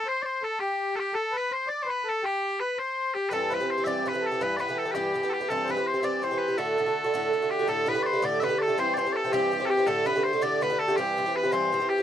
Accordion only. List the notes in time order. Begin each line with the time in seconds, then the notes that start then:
0.06 C5
0.24 C5
0.42 A4
0.61 G4
0.97 G4
1.13 A4
1.32 B4
1.51 C5
1.67 D5
1.86 B4
2.04 A4
2.23 G4
2.60 B4
2.78 C5
3.15 G4
3.32 A4
3.49 B4
3.68 C5
3.86 D5
4.06 B4
4.22 A4
4.41 B4
4.59 B4
4.76 A4
4.93 G4
5.29 G4
5.49 A4
5.64 C5
5.69 B4
5.86 C5
6.00 D5 E5
6.22 C5
6.58 A4
7.51 G4
7.67 A4
7.88 B4
8.23 D5
8.42 B4
8.60 A4
8.78 C5
8.90 C5
9.02 C5
9.13 A4
9.30 G4
9.70 G4
9.88 A4
10.07 B4
10.25 C5
10.43 D5
10.62 B4
10.80 A4
11.00 G4
11.35 B4
11.53 C5
11.90 G4